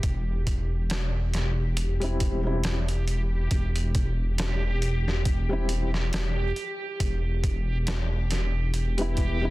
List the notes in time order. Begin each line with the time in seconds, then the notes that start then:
Already playing: G4
0.03 E1, kick, closed hi-hat
0.47 kick, closed hi-hat
0.90 snare, closed hi-hat
1.34 snare, closed hi-hat
1.77 closed hi-hat
2.00 G3 C4 E4, closed hi-hat
2.20 kick, closed hi-hat
2.43 G3 C4 E4
2.64 snare, closed hi-hat
2.89 closed hi-hat
3.08 closed hi-hat
3.51 E1, kick, closed hi-hat
3.76 closed hi-hat
3.95 kick, closed hi-hat
4.38 snare, closed hi-hat
4.82 closed hi-hat
5.08 snare
5.25 kick, closed hi-hat
5.49 G3 C4 E4
5.69 closed hi-hat
5.93 E1, snare
6.13 snare, closed hi-hat
6.56 closed hi-hat
7.00 E1, kick, closed hi-hat
7.44 kick, closed hi-hat
7.87 snare, closed hi-hat
8.31 snare, closed hi-hat
8.74 closed hi-hat
8.97 G3 B3 E4, closed hi-hat
9.17 kick, closed hi-hat
9.41 G3 B3 E4